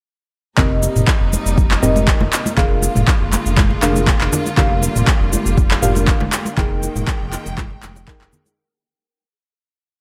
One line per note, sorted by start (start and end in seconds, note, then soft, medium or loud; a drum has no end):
0.57 0.88 F1 loud
0.57 2.56 C3 medium
0.57 2.56 G3 medium
0.57 6.54 A#3 medium
0.57 1.80 C4 medium
0.57 2.56 D#4 loud
0.57 1.80 G4 medium
0.57 1.80 A#4 medium
0.57 1.80 D#5 loud
0.57 kick loud
0.57 clap medium
0.57 low conga medium
0.57 cabasa soft
0.83 muted conga medium
0.83 cabasa medium
0.96 1.03 F1 medium
0.96 mid tom loud
0.96 cabasa medium
1.08 kick loud
1.08 clap loud
1.08 muted conga soft
1.08 cabasa soft
1.21 1.36 F1 loud
1.33 muted conga medium
1.33 high conga medium
1.33 cabasa medium
1.46 1.76 F1 medium
1.46 cabasa medium
1.58 kick loud
1.58 cabasa soft
1.71 clap loud
1.71 muted conga soft
1.82 2.13 F1 loud
1.82 2.55 C4 loud
1.82 2.55 G4 medium
1.82 2.55 A#4 medium
1.82 2.55 D#5 loud
1.82 mid tom medium
1.82 cabasa medium
1.96 muted conga medium
1.96 high conga medium
1.96 cabasa medium
2.08 kick loud
2.08 clap loud
2.08 cabasa soft
2.21 2.28 F1 medium
2.21 muted conga soft
2.21 high conga loud
2.21 low conga loud
2.33 clap loud
2.33 cabasa loud
2.46 muted conga medium
2.46 high conga medium
2.46 cabasa medium
2.57 2.88 F1 loud
2.57 6.54 D3 medium
2.57 4.56 G#3 medium
2.57 3.80 D4 medium
2.57 6.54 F4 loud
2.57 3.80 G#4 medium
2.57 3.80 A#4 medium
2.57 3.80 F5 loud
2.57 kick loud
2.57 clap medium
2.57 low conga medium
2.57 cabasa soft
2.82 muted conga medium
2.82 cabasa loud
2.95 3.04 F1 medium
2.95 mid tom loud
2.95 high conga medium
2.95 cabasa medium
3.08 kick loud
3.08 clap loud
3.08 cabasa soft
3.21 3.36 F1 loud
3.32 clap medium
3.32 muted conga medium
3.32 high conga medium
3.32 cabasa loud
3.46 3.76 F1 loud
3.46 cabasa medium
3.57 kick loud
3.57 clap loud
3.57 mid tom medium
3.57 high conga loud
3.57 cabasa soft
3.71 muted conga soft
3.82 4.13 F1 loud
3.82 4.55 D4 loud
3.82 4.55 G#4 medium
3.82 4.55 A#4 medium
3.82 4.55 F5 loud
3.82 clap medium
3.82 high conga medium
3.82 cabasa loud
3.96 muted conga medium
3.96 high conga medium
3.96 cabasa medium
4.08 kick loud
4.08 clap loud
4.08 cabasa soft
4.21 4.28 F1 medium
4.21 clap medium
4.21 muted conga soft
4.33 low conga loud
4.33 cabasa loud
4.46 muted conga medium
4.46 cabasa medium
4.57 4.88 F1 loud
4.57 6.56 G3 medium
4.57 5.80 D4 medium
4.57 5.80 G4 medium
4.57 5.80 A#4 medium
4.57 5.80 F5 loud
4.57 kick loud
4.57 clap medium
4.57 low conga loud
4.57 cabasa soft
4.82 muted conga medium
4.82 cabasa loud
4.96 5.03 F1 medium
4.96 mid tom medium
4.96 cabasa medium
5.08 kick loud
5.08 clap loud
5.08 muted conga soft
5.08 cabasa soft
5.21 5.36 F1 loud
5.33 muted conga medium
5.33 high conga medium
5.33 cabasa loud
5.46 5.76 F1 loud
5.46 cabasa medium
5.58 kick loud
5.58 cabasa soft
5.71 clap loud
5.71 muted conga soft
5.82 6.13 F1 loud
5.82 6.55 D4 loud
5.82 6.55 G4 medium
5.82 6.55 A#4 medium
5.82 6.55 F5 loud
5.82 mid tom medium
5.82 cabasa loud
5.95 muted conga medium
5.95 high conga medium
5.95 cabasa medium
6.08 kick loud
6.08 clap loud
6.08 cabasa soft
6.20 6.28 F1 medium
6.20 muted conga soft
6.20 high conga loud
6.20 low conga medium
6.33 clap loud
6.33 cabasa loud
6.45 muted conga medium
6.45 high conga medium
6.45 cabasa medium
6.57 6.88 F1 loud
6.57 8.56 D#3 medium
6.57 8.56 G#3 medium
6.57 8.56 A#3 medium
6.57 7.80 D#4 medium
6.57 7.80 G#4 medium
6.57 7.80 A#4 medium
6.57 7.80 G5 loud
6.57 8.56 G5 loud
6.57 kick loud
6.57 clap medium
6.57 low conga medium
6.57 cabasa soft
6.83 muted conga soft
6.83 cabasa medium
6.96 7.03 F1 loud
6.96 mid tom medium
6.96 high conga medium
6.96 cabasa medium
7.08 kick loud
7.08 clap loud
7.08 muted conga soft
7.08 cabasa soft
7.21 7.36 F1 loud
7.32 clap medium
7.32 muted conga medium
7.32 high conga medium
7.32 cabasa loud
7.46 7.76 F1 loud
7.46 cabasa medium
7.58 kick loud
7.58 clap medium
7.58 mid tom medium
7.58 high conga loud
7.58 cabasa soft
7.70 muted conga soft
7.83 8.13 F1 loud
7.83 clap medium
7.83 high conga medium
7.83 cabasa loud
7.96 muted conga medium
7.96 high conga medium
7.96 cabasa medium
8.08 8.55 D#4 medium
8.08 8.55 G#4 medium
8.08 8.55 A#4 medium
8.08 8.55 G5 medium
8.08 kick loud
8.08 clap loud
8.08 cabasa soft
8.20 8.28 F1 medium
8.20 clap medium
8.20 muted conga soft
8.33 low conga medium
8.33 cabasa loud
8.46 muted conga medium
8.46 cabasa medium